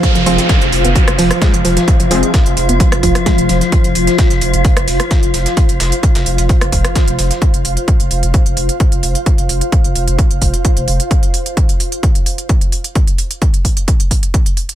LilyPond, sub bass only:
\new Staff \with { instrumentName = "Sub bass" } { \clef bass \time 4/4 \tempo 4 = 130 r16 f,,16 f,,16 r8 f,,16 f,,16 f,,16 r16 f,,16 f,,16 r8 f,,16 f,,16 r16 | r16 f,,16 f,,16 r8 f,,16 f,,16 f,,16 r16 f,,16 f,,16 r8 f,,16 f,,16 r16 | r16 f,,16 f,,16 r8 f,,16 f,,16 f,,16 r16 f,,16 f,,16 r8 f,,16 f,,16 r16 | r16 f,,16 f,,16 r8 f,,16 f,,16 f,,16 r16 f,,16 f,,16 r8 f,,16 f,,16 r16 |
r16 f,,16 f,,16 r8 f,,16 f,,16 f,,16 r16 f,,16 f,,16 r8 f,,16 f,,16 r16 | r16 f,,16 f,,16 r8 f,,16 f,,16 f,,16 r16 f,,16 f,,16 r8 f,,16 f,,16 r16 | r1 | r1 | }